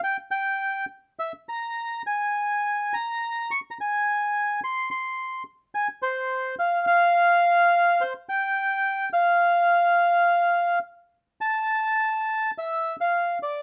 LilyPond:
\new Staff \with { instrumentName = "Bandoneon" } { \time 4/4 \key f \minor \tempo 4 = 106 g''8 g''4 r8 e''8 bes''4 aes''8~ | aes''4 bes''4 des'''16. bes''32 aes''4. | c'''8 c'''4 r8 aes''8 c''4 f''8 | f''2 c''8 g''4. |
f''2. r4 | \key a \phrygian a''2 e''8. f''8. d''8 | }